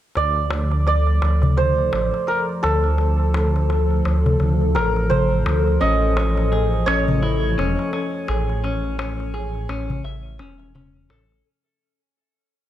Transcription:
0.15 1.20 D2 medium
0.15 11.47 F3 medium
0.15 11.47 A4 medium
0.15 0.87 D5 medium
0.15 darbuka tek soft
0.36 darbuka tek soft
0.51 darbuka tek medium
0.71 darbuka tek soft
0.87 3.34 D5 medium
0.87 darbuka tek soft
1.07 darbuka tek soft
1.22 1.90 D2 medium
1.22 darbuka tek medium
1.42 darbuka tek soft
1.42 darbuka dum medium
1.57 4.21 C5 medium
1.57 darbuka tek soft
1.78 darbuka tek soft
1.93 2.12 A1 medium
1.93 darbuka tek medium
2.14 darbuka tek soft
2.27 2.37 A#4 medium
2.27 darbuka tek soft
2.49 darbuka tek soft
2.63 4.02 D2 medium
2.63 5.55 A4 medium
2.63 darbuka tek medium
2.84 darbuka tek soft
2.98 darbuka tek medium
3.20 darbuka tek soft
3.34 darbuka tek medium
3.56 darbuka tek soft
3.70 darbuka tek medium
3.91 darbuka tek soft
4.05 4.37 D2 medium
4.05 darbuka tek medium
4.26 darbuka tek soft
4.26 darbuka dum medium
4.40 4.78 D2 loud
4.40 darbuka tek medium
4.61 darbuka tek soft
4.75 5.43 A1 medium
4.75 7.58 A#4 medium
4.75 darbuka tek medium
4.96 darbuka tek soft
5.10 6.92 C5 medium
5.10 darbuka tek soft
5.10 darbuka dum medium
5.32 darbuka tek soft
5.46 5.78 D2 medium
5.46 darbuka tek loud
5.67 darbuka tek soft
5.81 6.85 A1 loud
5.81 6.13 C#4 loud
5.81 8.18 D#5 loud
5.81 darbuka tek medium
6.02 darbuka tek soft
6.17 6.50 C#4 medium
6.17 darbuka tek loud
6.37 darbuka tek soft
6.52 6.86 G#4 medium
6.52 darbuka tek medium
6.73 darbuka tek soft
6.86 7.55 A1 medium
6.86 7.19 C#4 loud
6.86 10.71 C#5 medium
6.86 darbuka tek loud
7.08 darbuka tek soft
7.08 darbuka dum medium
7.22 7.56 E4 medium
7.22 darbuka tek soft
7.44 darbuka tek soft
7.58 7.76 E1 medium
7.58 7.90 C#4 medium
7.58 darbuka tek medium
7.79 darbuka tek soft
7.93 8.27 C#4 medium
7.93 darbuka tek medium
8.14 darbuka tek soft
8.28 9.67 A1 medium
8.28 8.62 G#4 medium
8.28 darbuka tek medium
8.49 darbuka tek soft
8.64 8.96 C#4 loud
8.64 darbuka tek medium
8.84 darbuka tek soft
8.99 9.32 C#4 medium
8.99 darbuka tek loud
9.20 darbuka tek soft
9.34 9.68 G#4 medium
9.34 darbuka tek soft
9.55 darbuka tek soft
9.69 10.01 A1 medium
9.69 10.02 C#4 loud
9.69 darbuka tek medium
9.90 darbuka tek soft
9.90 darbuka dum medium
10.04 10.42 A1 medium
10.04 10.37 E5 medium
10.04 darbuka tek medium
10.26 darbuka tek soft
10.39 11.08 E1 medium
10.39 10.72 C#4 medium
10.39 darbuka tek medium
10.60 darbuka tek soft
10.75 11.09 C#4 medium
10.75 darbuka tek medium
10.75 darbuka dum medium
10.96 darbuka tek soft
11.10 11.42 A1 medium
11.10 11.44 A4 loud
11.10 darbuka tek loud
11.32 darbuka tek soft

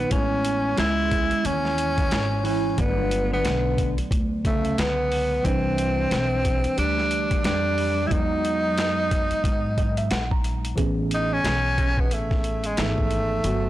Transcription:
0.00 0.11 D#3 medium
0.00 0.14 B3 medium
0.10 0.75 A1 loud
0.10 0.76 E3 medium
0.10 2.74 G#3 soft
0.10 2.75 B3 soft
0.10 0.78 C#4 medium
0.10 2.75 C#4 medium
0.10 2.73 E4 medium
0.10 kick loud
0.10 closed hi-hat medium
0.45 closed hi-hat medium
0.77 1.29 C#2 medium
0.77 1.43 G#3 medium
0.77 1.48 E4 loud
0.77 snare loud
0.77 closed hi-hat medium
1.11 kick medium
1.11 closed hi-hat medium
1.31 muted upright bass stroke soft
1.31 closed hi-hat medium
1.43 2.08 D#2 medium
1.43 2.42 E3 medium
1.43 2.45 C#4 loud
1.43 closed hi-hat medium
1.65 snare soft
1.78 closed hi-hat medium
1.98 kick medium
1.98 closed hi-hat medium
2.11 2.75 G#1 loud
2.11 snare loud
2.11 closed hi-hat medium
2.43 2.78 E3 medium
2.43 2.81 C#4 medium
2.43 open hi-hat soft
2.76 3.42 G1 loud
2.76 3.30 D3 medium
2.76 5.40 F#3 medium
2.76 5.40 A3 medium
2.76 5.41 B3 medium
2.76 3.32 B3 medium
2.76 kick loud
2.76 closed hi-hat medium
2.80 5.42 D5 medium
3.11 closed hi-hat medium
3.31 3.94 D3 medium
3.31 3.95 B3 medium
3.45 3.96 B1 loud
3.45 snare loud
3.45 closed hi-hat medium
3.78 kick medium
3.78 closed hi-hat medium
3.98 muted upright bass stroke medium
3.98 closed hi-hat medium
4.11 4.74 D2 loud
4.11 kick medium
4.11 closed hi-hat medium
4.45 4.78 C#3 medium
4.45 4.81 A3 medium
4.45 kick loud
4.45 closed hi-hat medium
4.65 closed hi-hat medium
4.78 5.42 C#2 medium
4.78 5.44 D3 medium
4.78 5.47 B3 medium
4.78 snare loud
4.78 closed hi-hat medium
5.12 open hi-hat medium
5.43 6.08 C2 loud
5.43 8.07 E3 medium
5.43 6.78 E3 medium
5.43 8.07 G3 medium
5.43 6.78 C4 medium
5.43 8.09 D4 medium
5.43 8.08 B4 medium
5.43 kick loud
5.43 closed hi-hat medium
5.78 closed hi-hat medium
6.11 6.62 B1 medium
6.11 snare medium
6.11 closed hi-hat medium
6.45 kick medium
6.45 closed hi-hat medium
6.64 muted upright bass stroke medium
6.64 closed hi-hat medium
6.77 7.41 D2 loud
6.77 7.40 G3 medium
6.77 7.41 D4 medium
6.77 closed hi-hat medium
6.98 snare soft
7.11 closed hi-hat medium
7.31 kick medium
7.31 closed hi-hat medium
7.44 8.08 F2 medium
7.44 8.01 G3 medium
7.44 8.09 D4 loud
7.44 snare loud
7.44 closed hi-hat medium
7.78 open hi-hat medium
8.06 10.73 F#3 medium
8.06 8.11 G3 medium
8.06 8.13 E4 medium
8.11 8.78 E2 loud
8.11 10.11 F#3 medium
8.11 10.74 G#3 medium
8.11 10.74 B3 medium
8.11 10.12 D#4 loud
8.11 10.75 D#4 medium
8.11 kick loud
8.11 closed hi-hat medium
8.45 closed hi-hat medium
8.78 9.28 F#2 loud
8.78 snare loud
8.78 closed hi-hat medium
9.11 kick medium
9.11 closed hi-hat medium
9.31 muted upright bass stroke soft
9.31 closed hi-hat medium
9.44 10.08 G#2 medium
9.44 kick medium
9.44 closed hi-hat medium
9.78 9.96 D#5 medium
9.78 kick medium
9.78 closed hi-hat medium
9.97 10.10 E5 medium
9.97 closed hi-hat medium
10.11 10.75 A#1 medium
10.11 10.30 F#5 medium
10.11 snare loud
10.11 closed hi-hat medium
10.31 10.75 A#5 medium
10.31 kick medium
10.44 closed hi-hat medium
10.65 closed hi-hat medium
10.76 11.41 A1 medium
10.76 12.73 E3 medium
10.76 12.74 B3 medium
10.76 12.75 C#4 medium
10.76 12.74 G#4 medium
10.76 kick loud
10.76 closed hi-hat medium
11.11 11.35 D#4 loud
11.11 closed hi-hat medium
11.33 12.02 C#4 loud
11.44 12.11 B1 medium
11.44 snare loud
11.44 closed hi-hat medium
11.78 kick medium
11.78 closed hi-hat medium
11.98 12.15 B3 medium
11.98 kick medium
12.11 12.74 A1 loud
12.11 12.68 A3 medium
12.11 closed hi-hat medium
12.31 kick medium
12.31 snare soft
12.44 closed hi-hat medium
12.64 12.81 G#3 medium
12.64 closed hi-hat medium
12.77 13.41 G#1 medium
12.77 13.44 E3 soft
12.77 13.70 A3 medium
12.77 13.44 B3 soft
12.77 13.45 D#4 medium
12.77 13.44 G#4 soft
12.77 snare loud
12.77 closed hi-hat medium
12.98 kick medium
13.11 closed hi-hat medium
13.43 13.70 G1 loud
13.43 13.70 F#3 medium
13.43 13.70 A3 medium
13.43 13.70 B3 soft
13.43 closed hi-hat medium
13.47 13.70 F#4 medium

